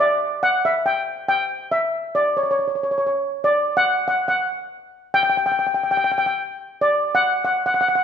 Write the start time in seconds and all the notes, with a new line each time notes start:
0.00 D5
0.43 F#5
0.65 E5
0.86 G5
1.28 G5
1.72 E5
2.15 D5
2.37 C#5
2.43 C#5
2.51 C#5
2.68 C#5
2.75 C#5
2.83 C#5
2.91 C#5
2.98 C#5
3.07 C#5
3.44 D5
3.77 F#5
4.08 F#5
4.28 F#5
5.14 G5
5.23 G5
5.30 G5
5.37 G5
5.46 G5
5.52 G5
5.59 G5
5.67 G5
5.74 G5
5.84 G5
5.91 G5
5.97 G5
6.04 G5
6.12 G5
6.18 G5
6.26 G5
6.81 D5
7.15 F#5
7.45 F#5
7.66 F#5
7.74 F#5
7.81 F#5
7.89 F#5
7.95 F#5